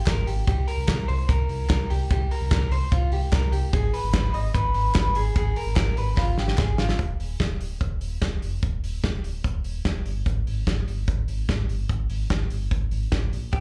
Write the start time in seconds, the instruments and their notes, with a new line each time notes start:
0.06 sub bass G#1, clean electric guitar A#4, kick, snare, clap, hi-hat pedal, ride
0.27 sub bass G#1, clean electric guitar G4, open hi-hat
0.47 sub bass C2, clean electric guitar G4, kick, hi-hat pedal, ride
0.68 clean electric guitar A#4, open hi-hat
0.77 sub bass C2
0.88 sub bass C2, clean electric guitar A#4, kick, snare, clap, hi-hat pedal, ride
1.08 sub bass C2, clean electric guitar C5, open hi-hat
1.29 sub bass C2, clean electric guitar A#4, kick, hi-hat pedal, ride
1.49 sub bass C2, open hi-hat
1.69 sub bass C2, clean electric guitar A#4, kick, snare, clap, hi-hat pedal, ride
1.90 sub bass C2, clean electric guitar G4, open hi-hat
2.10 sub bass C2, clean electric guitar G4, kick, hi-hat pedal, ride
2.31 clean electric guitar A#4, open hi-hat
2.41 sub bass C2
2.51 sub bass C2, clean electric guitar A#4, kick, snare, clap, hi-hat pedal, ride
2.70 sub bass C2, clean electric guitar C5, open hi-hat
2.91 sub bass C2, clean electric guitar F4, kick, hi-hat pedal, ride
3.11 sub bass C2, clean electric guitar G4, open hi-hat
3.32 sub bass C2, clean electric guitar A#4, kick, snare, clap, hi-hat pedal, ride
3.52 sub bass C2, clean electric guitar G4, open hi-hat
3.73 sub bass G#1, clean electric guitar G#4, kick, hi-hat pedal, ride
3.93 clean electric guitar B4, open hi-hat
4.03 sub bass G#1
4.13 sub bass G#1, clean electric guitar B4, kick, snare, clap, hi-hat pedal, ride
4.34 sub bass G#1, clean electric guitar D#5, open hi-hat
4.54 sub bass G#1, clean electric guitar B4, kick, hi-hat pedal, ride
4.74 sub bass G#1, open hi-hat
4.95 sub bass G#1, clean electric guitar B4, kick, snare, clap, hi-hat pedal, ride
5.15 sub bass G#1, clean electric guitar G#4, open hi-hat
5.36 sub bass G#1, clean electric guitar G#4, kick, hi-hat pedal, ride
5.56 clean electric guitar A#4, open hi-hat
5.66 sub bass G#1
5.76 sub bass G#1, clean electric guitar A#4, kick, snare, clap, hi-hat pedal, ride
5.97 sub bass G#1, clean electric guitar B4, open hi-hat
6.17 sub bass G#1, clean electric guitar F4, kick, snare
6.37 sub bass G#1, clean electric guitar G4, snare
6.48 snare
6.58 sub bass G#1, clean electric guitar G#4, kick, snare, clap
6.78 sub bass G#1, clean electric guitar F4, snare
6.89 snare
6.99 sub bass D#1, kick, closed hi-hat
7.19 sub bass D#1, open hi-hat
7.40 sub bass D#1, kick, snare, closed hi-hat
7.60 sub bass D1, open hi-hat
7.81 sub bass D#1, kick, closed hi-hat
8.01 sub bass D#1, open hi-hat
8.21 sub bass D#1, kick, snare, closed hi-hat
8.42 sub bass F1, open hi-hat
8.63 sub bass D#1, kick, closed hi-hat
8.83 sub bass D#1, open hi-hat
9.04 sub bass D#1, kick, snare, closed hi-hat
9.23 sub bass D1, open hi-hat
9.44 sub bass D#1, kick, closed hi-hat
9.64 sub bass D#1, open hi-hat
9.85 sub bass D#1, kick, snare, closed hi-hat
10.05 sub bass G1, open hi-hat
10.26 sub bass G#1, kick, closed hi-hat
10.47 sub bass G#1, open hi-hat
10.67 sub bass G#1, kick, snare, closed hi-hat
10.87 sub bass G1, open hi-hat
11.08 sub bass G#1, kick, closed hi-hat
11.28 sub bass G#1, open hi-hat
11.49 sub bass G#1, kick, snare, closed hi-hat
11.68 sub bass G1, open hi-hat
11.89 sub bass G#1, kick, closed hi-hat
12.10 sub bass G#1, open hi-hat
12.30 sub bass G#1, kick, snare, closed hi-hat
12.50 sub bass G1, open hi-hat
12.71 sub bass G#1, kick, closed hi-hat
12.90 sub bass G#1, open hi-hat
13.12 sub bass G#1, kick, snare, closed hi-hat
13.32 sub bass A#1, open hi-hat
13.53 sub bass C2, clean electric guitar G4, kick, closed hi-hat